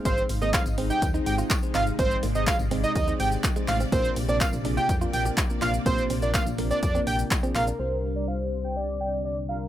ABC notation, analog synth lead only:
X:1
M:4/4
L:1/16
Q:1/4=124
K:Cm
V:1 name="Analog synth lead"
c2 z e f z2 g2 z g z3 f z | c2 z e f z2 e e2 g z3 f z | c2 z d f z2 g2 z g z3 f z | c2 z d f z2 d d2 g z3 f z |
c2 z d f z2 g2 z g z3 f z |]